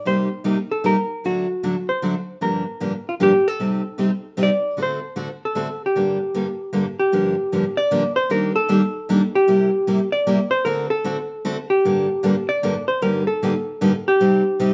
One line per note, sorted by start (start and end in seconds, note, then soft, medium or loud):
0.05 0.27 C3 medium
0.05 0.27 G3 medium
0.05 0.27 A#3 medium
0.05 0.27 D#4 medium
0.05 0.27 G4 medium
0.05 0.43 C5 medium
0.44 0.56 C3 medium
0.44 0.56 G3 medium
0.44 0.56 A#3 medium
0.44 0.56 D#4 medium
0.44 0.57 G4 medium
0.71 0.85 A4 medium
0.84 0.95 C3 medium
0.84 0.95 G3 medium
0.84 0.96 A#3 medium
0.84 0.95 D#4 medium
0.84 0.96 G4 medium
0.84 1.25 A#4 medium
1.24 1.45 D3 medium
1.24 1.45 F#3 medium
1.24 1.46 A3 medium
1.24 1.46 D4 medium
1.24 1.46 F#4 medium
1.24 1.90 F#4 medium
1.63 1.74 D3 medium
1.63 1.74 F#3 medium
1.63 1.74 A3 medium
1.63 1.74 D4 medium
1.63 1.74 F#4 medium
1.89 2.42 C5 medium
2.02 2.13 D3 medium
2.02 2.14 F#3 medium
2.02 2.14 A3 medium
2.02 2.14 D4 medium
2.02 2.14 F#4 medium
2.41 2.63 G2 medium
2.41 2.63 D3 medium
2.41 2.63 F3 medium
2.41 2.63 A#3 medium
2.41 2.63 D4 medium
2.41 2.63 G4 medium
2.41 3.08 A#4 medium
2.80 2.92 G2 medium
2.80 2.92 D3 medium
2.80 2.92 F3 medium
2.80 2.92 A#3 medium
2.80 2.92 D4 medium
2.80 2.92 G4 medium
3.09 3.14 F4 medium
3.20 3.31 G2 medium
3.20 3.31 D3 medium
3.20 3.31 F3 medium
3.20 3.31 A#3 medium
3.20 3.31 D4 medium
3.20 3.31 G4 medium
3.20 3.48 G4 medium
3.48 4.42 A4 medium
3.60 3.81 C3 medium
3.60 3.81 G3 medium
3.60 3.81 C4 medium
3.60 3.81 D#4 medium
3.60 3.81 G4 medium
3.98 4.09 C3 medium
3.98 4.10 G3 medium
3.98 4.10 C4 medium
3.98 4.10 D#4 medium
3.98 4.10 G4 medium
4.37 4.49 C3 medium
4.37 4.48 G3 medium
4.37 4.49 C4 medium
4.37 4.49 D#4 medium
4.37 4.49 G4 medium
4.43 4.80 D5 medium
4.77 4.98 D3 medium
4.77 4.99 A3 medium
4.77 4.99 C4 medium
4.77 4.99 F#4 medium
4.77 4.99 A4 medium
4.83 5.40 C5 medium
5.16 5.27 D3 medium
5.16 5.27 A3 medium
5.16 5.28 C4 medium
5.16 5.28 F#4 medium
5.16 5.28 A4 medium
5.45 5.83 A4 medium
5.55 5.66 D3 medium
5.55 5.67 A3 medium
5.55 5.67 C4 medium
5.55 5.67 F#4 medium
5.55 5.67 A4 medium
5.86 6.97 G4 medium
5.96 6.17 G2 medium
5.96 6.16 D3 medium
5.96 6.17 G3 medium
5.96 6.17 A#3 medium
5.96 6.17 D4 medium
5.96 6.17 A4 medium
6.34 6.45 G2 medium
6.34 6.46 D3 medium
6.34 6.45 G3 medium
6.34 6.46 A#3 medium
6.34 6.46 D4 medium
6.34 6.46 A4 medium
6.73 6.84 G2 medium
6.73 6.84 D3 medium
6.73 6.84 G3 medium
6.73 6.85 A#3 medium
6.73 6.85 D4 medium
6.73 6.85 A4 medium
7.00 7.79 G4 medium
7.12 7.34 G2 medium
7.12 7.34 D3 medium
7.12 7.34 F3 medium
7.12 7.34 A#3 medium
7.12 7.34 D4 medium
7.12 7.34 G4 medium
7.52 7.63 G2 medium
7.52 7.63 D3 medium
7.52 7.63 F3 medium
7.52 7.64 A#3 medium
7.52 7.64 D4 medium
7.52 7.64 G4 medium
7.77 8.13 D5 medium
7.91 8.02 G2 medium
7.91 8.02 D3 medium
7.91 8.02 F3 medium
7.91 8.03 A#3 medium
7.91 8.02 D4 medium
7.91 8.03 G4 medium
8.16 8.31 C5 medium
8.30 8.51 D#3 medium
8.30 8.51 G3 medium
8.30 8.52 A#3 medium
8.30 8.52 D4 medium
8.30 8.52 G4 medium
8.30 8.54 A#4 medium
8.56 9.35 A4 loud
8.69 8.80 D#3 medium
8.69 8.81 G3 medium
8.69 8.80 A#3 medium
8.69 8.80 D4 loud
8.69 8.81 G4 medium
9.09 9.20 D#3 medium
9.09 9.20 G3 medium
9.09 9.21 A#3 medium
9.09 9.20 D4 loud
9.09 9.21 G4 medium
9.35 10.09 G4 medium
9.48 9.69 C3 medium
9.48 9.69 G3 medium
9.48 9.69 A#3 medium
9.48 9.69 E4 medium
9.48 9.69 G4 medium
9.87 9.98 C3 medium
9.87 9.98 G3 medium
9.87 9.99 A#3 medium
9.87 9.99 E4 medium
9.87 9.99 G4 medium
10.12 10.50 D5 medium
10.27 10.38 C3 medium
10.27 10.38 G3 medium
10.27 10.38 A#3 medium
10.27 10.38 E4 medium
10.27 10.38 G4 medium
10.51 10.66 C5 medium
10.65 10.87 D3 medium
10.65 10.87 A3 medium
10.65 10.87 C4 medium
10.65 10.87 F#4 medium
10.65 10.87 A4 medium
10.65 10.90 A#4 medium
10.90 11.65 A4 medium
11.04 11.16 D3 medium
11.04 11.16 A3 medium
11.04 11.16 C4 medium
11.04 11.16 F#4 medium
11.04 11.16 A4 medium
11.45 11.56 D3 medium
11.45 11.56 A3 loud
11.45 11.56 C4 medium
11.45 11.56 F#4 medium
11.45 11.56 A4 medium
11.70 12.50 G4 medium
11.85 12.05 G2 medium
11.85 12.06 D3 medium
11.85 12.06 G3 medium
11.85 12.06 A#3 medium
11.85 12.06 D4 medium
11.85 12.06 A4 medium
12.23 12.34 G2 medium
12.23 12.34 D3 medium
12.23 12.34 G3 medium
12.23 12.34 A#3 medium
12.23 12.35 D4 medium
12.23 12.35 A4 medium
12.49 12.85 D5 medium
12.63 12.74 G2 medium
12.63 12.74 D3 medium
12.63 12.74 G3 medium
12.63 12.74 A#3 medium
12.63 12.74 D4 medium
12.63 12.74 A4 medium
12.88 13.01 C5 medium
13.02 13.23 G2 medium
13.02 13.23 D3 medium
13.02 13.23 G3 medium
13.02 13.23 A#3 medium
13.02 13.23 D#4 medium
13.02 13.23 G4 medium
13.02 13.25 A#4 medium
13.27 14.07 A4 medium
13.42 13.53 G2 medium
13.42 13.53 D3 medium
13.42 13.53 G3 medium
13.42 13.53 A#3 medium
13.42 13.53 D#4 medium
13.42 13.53 G4 medium
13.81 13.92 G2 medium
13.81 13.92 D3 medium
13.81 13.92 G3 medium
13.81 13.92 A#3 medium
13.81 13.92 D#4 loud
13.81 13.92 G4 medium
14.08 14.74 G4 medium
14.20 14.41 C3 medium
14.20 14.41 G3 medium
14.20 14.41 C4 medium
14.20 14.41 D#4 medium
14.20 14.41 G4 medium
14.59 14.70 C3 medium
14.59 14.70 G3 medium
14.59 14.70 C4 medium
14.59 14.70 D#4 medium
14.59 14.71 G4 medium